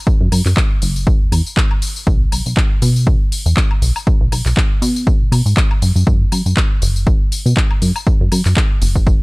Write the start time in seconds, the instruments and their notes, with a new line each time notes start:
0.07 analog synth bass F#2, kick, tambourine
0.21 analog synth bass F#2
0.32 analog synth bass F#2, open hi-hat, tambourine, high woodblock
0.46 analog synth bass F#2, clap, tambourine
0.57 kick, clap, tambourine
0.82 analog synth bass F#1, open hi-hat, tambourine
0.96 tambourine
1.07 kick, tambourine
1.21 analog synth bass E2
1.32 analog synth bass E2, open hi-hat, tambourine, high woodblock
1.46 tambourine
1.57 kick, clap
1.71 high woodblock
1.82 open hi-hat, tambourine
1.96 tambourine
2.07 analog synth bass B1, kick, tambourine
2.32 analog synth bass B1, open hi-hat, tambourine, high woodblock
2.46 analog synth bass B1, tambourine
2.57 kick, clap
2.82 analog synth bass B2, open hi-hat, tambourine
2.96 tambourine
3.07 kick
3.32 open hi-hat, tambourine
3.46 analog synth bass E2, tambourine
3.57 kick, clap, tambourine
3.71 high woodblock
3.82 analog synth bass B1, open hi-hat, tambourine
3.96 tambourine, high woodblock
4.07 analog synth bass B1, kick, tambourine
4.21 analog synth bass B1
4.32 analog synth bass B1, open hi-hat, tambourine, high woodblock
4.45 analog synth bass B1, clap, tambourine
4.57 kick, clap, tambourine
4.82 analog synth bass B2, open hi-hat, tambourine
4.96 tambourine
5.07 kick, tambourine
5.21 analog synth bass B2
5.32 analog synth bass B2, open hi-hat, tambourine, high woodblock
5.46 analog synth bass G#2, tambourine
5.57 kick, clap
5.71 high woodblock
5.82 analog synth bass F#2, open hi-hat, tambourine
5.96 analog synth bass F#2, tambourine
6.07 analog synth bass F#2, kick
6.32 analog synth bass F#2, open hi-hat, tambourine, high woodblock
6.46 analog synth bass F#2, tambourine
6.57 kick, clap
6.82 analog synth bass F#1, open hi-hat, tambourine
6.96 tambourine
7.07 kick, tambourine
7.32 open hi-hat, tambourine
7.46 analog synth bass B2, tambourine
7.57 kick, clap, tambourine
7.71 high woodblock
7.82 analog synth bass F#2, open hi-hat, tambourine
7.96 tambourine, high woodblock
8.07 analog synth bass F#2, kick, tambourine
8.21 analog synth bass F#2
8.32 analog synth bass F#2, open hi-hat, tambourine, high woodblock
8.45 analog synth bass F#2, clap, tambourine
8.57 kick, clap, tambourine
8.82 analog synth bass F#1, open hi-hat, tambourine
8.95 kick, tambourine
9.07 kick, tambourine